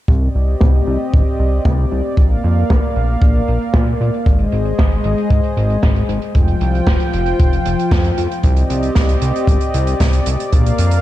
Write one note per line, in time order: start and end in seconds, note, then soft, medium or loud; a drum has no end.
0.08 0.29 C2 loud
0.08 2.16 C4 medium
0.08 2.16 G4 medium
0.08 4.23 D5 medium
0.08 2.16 D#5 medium
0.08 kick loud
0.08 closed hi-hat medium
0.22 closed hi-hat medium
0.35 0.55 C2 medium
0.35 closed hi-hat medium
0.47 closed hi-hat medium
0.61 0.82 C2 medium
0.61 kick loud
0.61 snare loud
0.74 closed hi-hat medium
0.87 0.97 C2 medium
0.87 closed hi-hat medium
1.00 closed hi-hat medium
1.13 1.24 G1 medium
1.13 kick loud
1.13 closed hi-hat medium
1.27 closed hi-hat medium
1.39 1.60 C2 medium
1.39 closed hi-hat medium
1.52 closed hi-hat soft
1.65 1.86 C2 loud
1.65 kick loud
1.65 snare loud
1.79 closed hi-hat medium
1.91 2.02 C2 medium
1.91 closed hi-hat loud
2.05 closed hi-hat medium
2.17 2.38 A#1 medium
2.17 4.24 A#3 medium
2.17 4.24 A#4 medium
2.17 4.24 F5 medium
2.17 kick loud
2.17 closed hi-hat medium
2.31 closed hi-hat soft
2.44 2.64 F2 medium
2.44 closed hi-hat medium
2.56 closed hi-hat soft
2.70 2.80 A#1 loud
2.70 kick loud
2.70 snare loud
2.70 closed hi-hat medium
2.83 closed hi-hat medium
2.96 3.16 A#1 medium
2.96 closed hi-hat loud
3.09 closed hi-hat soft
3.22 3.42 A#1 medium
3.22 kick loud
3.22 closed hi-hat medium
3.35 closed hi-hat medium
3.48 3.58 A#1 medium
3.48 closed hi-hat loud
3.61 closed hi-hat medium
3.74 3.94 A#2 loud
3.74 kick loud
3.74 snare loud
3.74 closed hi-hat medium
3.87 closed hi-hat medium
4.01 4.11 A#2 medium
4.01 closed hi-hat medium
4.14 closed hi-hat soft
4.26 4.47 G#1 loud
4.26 6.33 G#3 medium
4.26 6.33 G#4 medium
4.26 6.33 C5 medium
4.26 6.33 D#5 medium
4.26 kick loud
4.26 closed hi-hat medium
4.39 closed hi-hat medium
4.52 4.73 G#1 medium
4.52 closed hi-hat loud
4.65 closed hi-hat medium
4.78 4.99 G#1 medium
4.78 kick loud
4.78 snare loud
4.78 closed hi-hat medium
4.92 closed hi-hat medium
5.04 5.15 G#1 medium
5.04 closed hi-hat medium
5.18 closed hi-hat medium
5.30 5.41 G#2 medium
5.30 kick loud
5.30 closed hi-hat medium
5.44 closed hi-hat soft
5.57 5.77 G#1 medium
5.57 closed hi-hat medium
5.70 closed hi-hat medium
5.83 6.03 G#1 loud
5.83 kick loud
5.83 snare loud
5.83 closed hi-hat medium
5.96 closed hi-hat medium
6.09 6.19 G#1 medium
6.09 closed hi-hat medium
6.22 closed hi-hat medium
6.35 6.55 F1 medium
6.35 8.42 F3 medium
6.35 8.42 F4 medium
6.35 8.42 C5 medium
6.35 8.42 G5 medium
6.35 kick loud
6.35 closed hi-hat medium
6.48 closed hi-hat medium
6.61 6.82 C2 medium
6.61 closed hi-hat medium
6.75 closed hi-hat medium
6.87 6.97 F1 loud
6.87 kick loud
6.87 snare loud
6.87 closed hi-hat medium
7.00 closed hi-hat medium
7.13 7.34 F1 medium
7.13 closed hi-hat medium
7.26 closed hi-hat medium
7.40 7.60 F1 medium
7.40 kick loud
7.40 closed hi-hat medium
7.53 closed hi-hat medium
7.65 7.76 F1 medium
7.65 closed hi-hat medium
7.79 closed hi-hat medium
7.91 8.12 F2 loud
7.91 kick loud
7.91 snare loud
7.91 closed hi-hat medium
8.04 closed hi-hat medium
8.18 8.28 F2 medium
8.18 closed hi-hat medium
8.31 closed hi-hat medium
8.43 8.64 C2 loud
8.43 10.51 C4 medium
8.43 10.50 G4 medium
8.43 11.02 D5 medium
8.43 10.50 D#5 medium
8.43 kick loud
8.43 closed hi-hat medium
8.56 closed hi-hat medium
8.70 8.90 C2 medium
8.70 closed hi-hat medium
8.83 closed hi-hat soft
8.95 9.16 C2 medium
8.95 kick loud
8.95 snare loud
8.95 closed hi-hat medium
9.09 closed hi-hat medium
9.22 9.32 C2 medium
9.22 closed hi-hat medium
9.36 closed hi-hat soft
9.47 9.58 G1 medium
9.47 kick loud
9.47 closed hi-hat medium
9.61 closed hi-hat soft
9.74 9.95 C2 medium
9.74 closed hi-hat medium
9.87 closed hi-hat medium
10.00 10.21 C2 loud
10.00 kick loud
10.00 snare loud
10.00 closed hi-hat medium
10.13 closed hi-hat medium
10.26 10.37 C2 medium
10.26 closed hi-hat loud
10.40 closed hi-hat medium
10.52 10.73 A#1 medium
10.52 11.02 A#3 medium
10.52 11.02 A#4 medium
10.52 11.02 F5 medium
10.52 kick loud
10.52 closed hi-hat medium
10.66 closed hi-hat soft
10.78 10.99 F2 medium
10.78 closed hi-hat medium
10.91 closed hi-hat medium